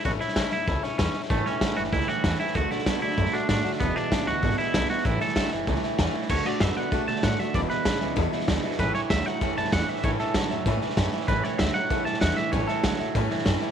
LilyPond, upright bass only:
\new Staff \with { instrumentName = "Upright bass" } { \clef bass \time 4/4 \key a \major \tempo 4 = 192 a,,8 r8 cis,8 fis,,8 cis,8 r8 e,8 r8 | a,,8 r8 cis,8 fis,,8 cis,8 r8 e,8 r8 | d,8 r8 fis,8 b,,8 fis,8 r8 a,8 r8 | e,,8 r8 gis,,8 d,8 gis,,8 r8 b,,8 r8 |
a,,8 r8 cis,8 fis,,8 cis,8 r8 e,8 r8 | d,8 r8 fis,8 r8 b,8 b,8 a,8 r8 | e,,8 r8 a,,8 cis,8 e,8 r8 d,8 r8 | a,,8 r8 d,8 r8 fis,8 fis,8 e,8 r8 |
a,,8 r8 d,8 fis,8 a,8 r8 fis,8 r8 | a,,8 r8 d,8 r8 fis,8 fis,8 e,8 r8 | a,,8 r8 d,8 fis,8 a,8 r8 fis,8 r8 | }